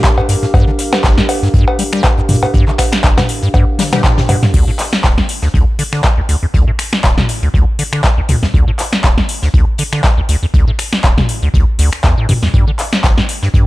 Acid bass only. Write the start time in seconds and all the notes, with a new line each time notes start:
0.18 G2
0.29 G2
0.43 A2
0.54 G2
0.68 D3
1.04 G1
1.18 G2
1.43 G2
1.54 G2
1.79 G3
1.93 G3
2.18 G2
2.29 G2
2.43 A2
2.54 G2
2.68 D3
3.04 G1
3.18 G2
3.43 G2
3.54 G2
3.79 G3
3.93 G3
4.18 G2
4.29 G2
4.43 A2
4.54 D2
4.68 A2
5.04 D1
5.18 D2
5.43 D2
5.54 D2
5.79 D3
5.93 D3
6.18 D2
6.29 D2
6.43 E2
6.54 D2
6.68 A2
7.04 D1
7.18 D2
7.43 D2
7.54 D2
7.79 D3
7.93 D3
8.18 D2
8.29 D2
8.43 E2
8.54 D2
8.68 A2
9.04 D1
9.18 D2
9.43 D2
9.54 D2
9.79 D3
9.93 D3
10.18 D2
10.29 D2
10.43 E2
10.54 D2
10.68 A2
11.04 D1
11.18 D2
11.43 D2
11.54 D2
11.79 D2
12.04 E2
12.18 A2
12.29 G2
12.43 E2
12.54 G2
12.68 D3
13.04 G1
13.18 G2
13.43 G2
13.54 G2